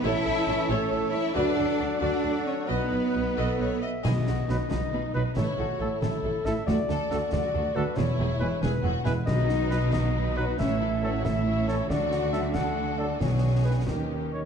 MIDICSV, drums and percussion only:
0, 0, Header, 1, 2, 480
1, 0, Start_track
1, 0, Tempo, 437318
1, 46, Time_signature, 6, 3, 24, 8
1, 1966, Tempo, 450450
1, 4846, Tempo, 434153
1, 10606, Tempo, 438276
1, 14446, Tempo, 452148
1, 15766, End_track
2, 0, Start_track
2, 0, Title_t, "Drums"
2, 4370, Note_on_c, 9, 35, 76
2, 4370, Note_on_c, 9, 38, 68
2, 4370, Note_on_c, 9, 49, 44
2, 4476, Note_off_c, 9, 35, 0
2, 4476, Note_off_c, 9, 38, 0
2, 4476, Note_off_c, 9, 49, 0
2, 4606, Note_on_c, 9, 38, 52
2, 4712, Note_off_c, 9, 38, 0
2, 4844, Note_on_c, 9, 38, 53
2, 4954, Note_off_c, 9, 38, 0
2, 5085, Note_on_c, 9, 35, 71
2, 5085, Note_on_c, 9, 38, 68
2, 5196, Note_off_c, 9, 35, 0
2, 5196, Note_off_c, 9, 38, 0
2, 5811, Note_on_c, 9, 35, 69
2, 5811, Note_on_c, 9, 38, 64
2, 5921, Note_off_c, 9, 35, 0
2, 5921, Note_off_c, 9, 38, 0
2, 6538, Note_on_c, 9, 35, 67
2, 6538, Note_on_c, 9, 38, 65
2, 6649, Note_off_c, 9, 35, 0
2, 6649, Note_off_c, 9, 38, 0
2, 7016, Note_on_c, 9, 38, 48
2, 7126, Note_off_c, 9, 38, 0
2, 7262, Note_on_c, 9, 35, 71
2, 7262, Note_on_c, 9, 38, 63
2, 7373, Note_off_c, 9, 35, 0
2, 7373, Note_off_c, 9, 38, 0
2, 7497, Note_on_c, 9, 38, 51
2, 7608, Note_off_c, 9, 38, 0
2, 7739, Note_on_c, 9, 38, 47
2, 7850, Note_off_c, 9, 38, 0
2, 7978, Note_on_c, 9, 35, 66
2, 7978, Note_on_c, 9, 38, 66
2, 8088, Note_off_c, 9, 35, 0
2, 8088, Note_off_c, 9, 38, 0
2, 8694, Note_on_c, 9, 35, 74
2, 8694, Note_on_c, 9, 38, 63
2, 8804, Note_off_c, 9, 35, 0
2, 8804, Note_off_c, 9, 38, 0
2, 9417, Note_on_c, 9, 35, 73
2, 9417, Note_on_c, 9, 38, 68
2, 9527, Note_off_c, 9, 35, 0
2, 9527, Note_off_c, 9, 38, 0
2, 9890, Note_on_c, 9, 38, 48
2, 10001, Note_off_c, 9, 38, 0
2, 10129, Note_on_c, 9, 35, 69
2, 10129, Note_on_c, 9, 38, 70
2, 10129, Note_on_c, 9, 49, 28
2, 10239, Note_off_c, 9, 35, 0
2, 10239, Note_off_c, 9, 38, 0
2, 10239, Note_off_c, 9, 49, 0
2, 10370, Note_on_c, 9, 38, 51
2, 10481, Note_off_c, 9, 38, 0
2, 10613, Note_on_c, 9, 38, 50
2, 10722, Note_off_c, 9, 38, 0
2, 10853, Note_on_c, 9, 35, 69
2, 10853, Note_on_c, 9, 38, 69
2, 10963, Note_off_c, 9, 35, 0
2, 10963, Note_off_c, 9, 38, 0
2, 11586, Note_on_c, 9, 35, 73
2, 11586, Note_on_c, 9, 38, 68
2, 11695, Note_off_c, 9, 35, 0
2, 11695, Note_off_c, 9, 38, 0
2, 12298, Note_on_c, 9, 35, 71
2, 12298, Note_on_c, 9, 38, 66
2, 12408, Note_off_c, 9, 35, 0
2, 12408, Note_off_c, 9, 38, 0
2, 12775, Note_on_c, 9, 38, 45
2, 12884, Note_off_c, 9, 38, 0
2, 13013, Note_on_c, 9, 35, 75
2, 13013, Note_on_c, 9, 38, 65
2, 13122, Note_off_c, 9, 35, 0
2, 13122, Note_off_c, 9, 38, 0
2, 13247, Note_on_c, 9, 38, 48
2, 13356, Note_off_c, 9, 38, 0
2, 13483, Note_on_c, 9, 38, 44
2, 13593, Note_off_c, 9, 38, 0
2, 13719, Note_on_c, 9, 35, 68
2, 13719, Note_on_c, 9, 38, 62
2, 13829, Note_off_c, 9, 35, 0
2, 13829, Note_off_c, 9, 38, 0
2, 14441, Note_on_c, 9, 35, 68
2, 14441, Note_on_c, 9, 38, 49
2, 14547, Note_off_c, 9, 35, 0
2, 14547, Note_off_c, 9, 38, 0
2, 15145, Note_on_c, 9, 35, 60
2, 15145, Note_on_c, 9, 38, 55
2, 15251, Note_off_c, 9, 35, 0
2, 15251, Note_off_c, 9, 38, 0
2, 15766, End_track
0, 0, End_of_file